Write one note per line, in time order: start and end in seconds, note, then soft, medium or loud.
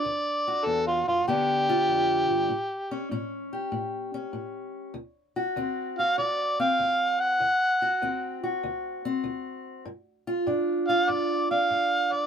0.00 0.67 D5 medium
0.05 0.62 D2 medium
0.48 1.25 F#4 medium
0.65 1.07 E2 medium
0.65 0.85 A4 medium
0.87 1.06 F4 medium
1.07 1.27 F#2 medium
1.07 1.27 F4 medium
1.27 1.84 G2 medium
1.27 2.50 D3 medium
1.27 2.48 B3 medium
1.27 2.48 D4 medium
1.27 3.07 G4 medium
1.69 2.47 F4 medium
1.88 2.29 F2 medium
2.30 2.49 G2 medium
2.49 3.06 A2 medium
2.91 3.11 C#4 medium
3.11 3.68 A2 medium
3.11 4.13 C#4 medium
3.53 4.93 G4 medium
3.72 4.29 A2 medium
4.14 4.93 C#4 medium
4.33 4.90 A2 medium
4.94 5.52 D2 medium
5.36 5.99 F#4 medium
5.56 6.13 D2 medium
5.56 6.58 C4 medium
5.99 7.38 F#4 medium
5.99 6.17 F5 medium
6.18 6.75 D2 medium
6.18 6.57 D5 medium
6.59 7.38 C4 medium
6.59 7.22 F5 medium
6.79 7.36 D2 medium
7.20 8.39 F#5 medium
7.40 7.97 D2 medium
7.82 8.42 F#4 medium
8.02 8.59 D2 medium
8.02 9.04 C4 medium
8.43 9.84 F#4 medium
8.63 9.21 D2 medium
9.05 9.84 C4 medium
9.24 9.81 D2 medium
9.85 10.43 G2 medium
10.27 10.88 F4 medium
10.47 11.04 G2 medium
10.47 11.51 D4 medium
10.88 12.27 F4 medium
10.88 11.11 F5 loud
11.09 11.66 G2 medium
11.09 11.49 D5 medium
11.51 12.27 D4 medium
11.51 12.14 F5 medium
11.70 12.27 G2 medium
12.13 12.27 D5 medium